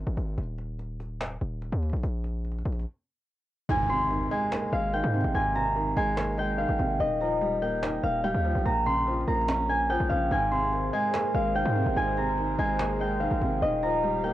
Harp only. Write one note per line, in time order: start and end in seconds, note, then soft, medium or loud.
3.70 4.30 G#5 medium
3.89 5.20 C6 medium
4.31 4.99 G#5 medium
4.73 6.39 F5 medium
4.93 5.41 G5 medium
5.35 5.97 G#5 medium
5.55 6.95 A#5 medium
5.97 6.45 G#5 medium
6.39 7.61 G5 medium
6.58 8.03 F5 medium
7.00 8.79 D#5 medium
7.21 8.61 A#5 medium
7.62 8.23 G5 medium
8.04 9.70 F5 medium
8.24 9.75 G5 medium
8.65 9.27 A#5 medium
8.86 10.17 C6 medium
9.28 10.68 A#5 medium
9.69 9.96 G#5 medium
9.90 10.38 G5 medium
10.09 11.34 F5 medium
10.32 10.93 G#5 medium
10.51 11.82 C6 medium
10.93 11.62 G#5 medium
11.35 13.01 F5 medium
11.56 12.03 G5 medium
11.97 12.59 G#5 medium
12.18 13.58 A#5 medium
12.59 13.07 G#5 medium
13.01 14.23 G5 medium
13.20 14.33 F5 medium
13.62 14.33 D#5 medium
13.83 14.33 A#5 medium
14.24 14.33 G5 medium